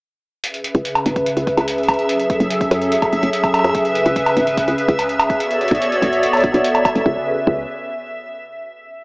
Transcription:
0.43 C#3 C#4 G#4 B4 E5, closed hi-hat
0.54 closed hi-hat
0.64 closed hi-hat
0.75 C#2, kick, closed hi-hat
0.85 closed hi-hat
0.95 closed hi-hat, high woodblock
1.06 G#1, closed hi-hat
1.16 kick, closed hi-hat
1.26 closed hi-hat
1.37 C#2, closed hi-hat
1.47 kick, closed hi-hat
1.57 C#2, closed hi-hat, high woodblock
1.68 closed hi-hat
1.78 closed hi-hat
1.83 closed hi-hat
1.89 kick, closed hi-hat, high woodblock
1.94 closed hi-hat
1.99 closed hi-hat
2.09 F#3 A4, closed hi-hat
2.19 closed hi-hat
2.30 kick, closed hi-hat
2.40 F#1, closed hi-hat
2.50 closed hi-hat
2.61 kick, closed hi-hat
2.71 F#2, closed hi-hat
2.82 closed hi-hat
2.92 closed hi-hat
3.02 kick, closed hi-hat, high woodblock
3.13 F#1, closed hi-hat
3.23 F#1, closed hi-hat
3.33 closed hi-hat
3.44 kick, closed hi-hat, high woodblock
3.54 closed hi-hat, high woodblock
3.59 high woodblock
3.64 F#2, closed hi-hat, high woodblock
3.70 high woodblock
3.75 C#3 B4, kick, closed hi-hat
3.85 closed hi-hat
3.95 closed hi-hat
4.06 C#2, closed hi-hat
4.16 kick, closed hi-hat
4.26 closed hi-hat, high woodblock
4.37 G#1, closed hi-hat
4.47 closed hi-hat
4.57 kick, closed hi-hat
4.68 C#2, closed hi-hat
4.78 closed hi-hat
4.88 C#2, kick, closed hi-hat
4.99 closed hi-hat, high woodblock
5.09 closed hi-hat
5.20 closed hi-hat, high woodblock
5.30 kick, closed hi-hat
5.40 B3 F#4 A4 C#5 D5, closed hi-hat
5.51 closed hi-hat
5.61 closed hi-hat
5.68 B1, kick, closed hi-hat
5.71 closed hi-hat
5.75 closed hi-hat
5.82 closed hi-hat
5.92 closed hi-hat
6.02 F#1, kick, closed hi-hat
6.13 closed hi-hat
6.23 closed hi-hat
6.33 closed hi-hat, high woodblock
6.37 closed hi-hat
6.40 B1, kick, closed hi-hat
6.44 closed hi-hat
6.54 B1, closed hi-hat
6.64 closed hi-hat
6.75 closed hi-hat, high woodblock
6.85 kick, closed hi-hat, high woodblock
6.95 F#1, closed hi-hat
7.06 C#2 C#3 C#4 G#4 B4 E5, kick
7.47 C#2, kick

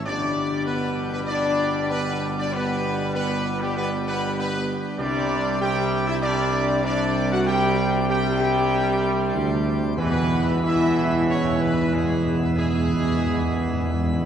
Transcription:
0.05 G1 B2 G3 B3 D4 G4 D5
0.65 B3 B4
1.12 B3 B4
1.27 D4 D5
1.90 B3 B4
2.39 D4 D5
2.52 B3 B4
3.14 B3 B4
3.60 G3 G4
3.76 B3 B4
4.06 B3 B4
4.39 B3 B4
4.99 C2 C3 G3 C4 D4 G4 D5
5.61 C3 G3 G4 G5
6.07 E4 E5
6.21 C3 G3 D4 D5
6.83 C3 G3 D4 D5
7.32 F#4 F#5
7.46 C3 G3 G4 G5
8.08 C3 G3 G4 G5
8.40 G4 G5
9.35 D2
9.96 E2 B2 E3 B3 E4 B4
10.06 E2
10.13 E2
10.21 E2
10.29 E2
10.37 E2
10.44 E2
10.52 E2
10.60 E2 B2 E3 E4
10.65 E2 E5
10.75 E2
10.83 E2
10.90 E2
10.98 E2
11.06 E2
11.13 E2
11.20 E2
11.27 E2 C#4 C#5
11.36 E2
11.44 E2
11.51 E2
11.59 E2 B3 B4
11.66 E2
11.74 E2
11.81 E2
11.88 E2 B2 E3 G#3
11.94 E2 G#4
12.03 E2
12.11 E2
12.18 E2
12.26 E2
12.34 E2
12.39 E2 B3 B4
12.50 E2
12.56 E2 B2 E3 G#3 G#4
12.64 E2
12.72 E2
12.79 E2
12.87 E2
12.95 E2
13.02 E2
13.11 E2
13.19 E2
13.26 E2
13.34 E2
13.41 E2
13.50 E2
13.58 E2
13.66 E2
13.74 E2
13.82 E2
13.90 E2
13.98 E2
14.06 E2
14.13 E2
14.22 E2

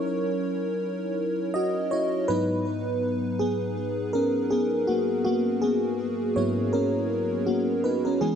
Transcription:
Already playing: F#3 C#4 D#4 E4 A#4 C#5
1.54 F#4 D#5
1.91 E4 C#5
2.28 G#2 F#3 B3 D#4 B4
3.39 B3 G#4
4.13 C#4 A#4
4.50 B3 G#4
4.87 A#3 F#4
5.25 A#3 F#4
5.62 B3 G#4
6.36 G#2 F#3 B3 E4 C#5
6.73 C#4 A#4
7.46 A#3 F#4
7.84 D#4 B4
8.05 C#4 A#4
8.21 E3 G#3 B3 C#4 G#4

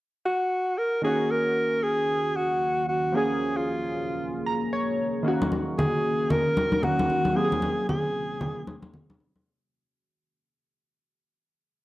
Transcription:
0.26 F#4
0.78 A#4
1.02 D#3 A#3 C#4 F#4 G#4
1.07 F#4
1.31 A#4
1.83 G#4
2.36 F#4
2.89 F#4
3.12 C#3 F3 A#3 C#4 G#4
3.17 G#4
3.57 F4
4.46 A#5
4.73 C#5
5.23 D#3 A#3 C#4 F#4
5.28 F#4
5.42 high conga
5.52 high conga
5.78 G#4, low conga
6.30 A#4, low conga
6.57 high conga
6.72 high conga
6.82 D#3 A#3 C#4 F#4, low conga
6.99 high conga
7.10 high conga
7.25 high conga
7.33 C3 F#3 A#3 C4 G#4
7.38 G4
7.45 G#4
7.52 high conga
7.62 high conga
7.89 G#4, low conga
8.41 low conga
8.67 high conga
8.82 high conga
8.94 low conga
9.10 high conga
9.20 high conga
9.36 high conga

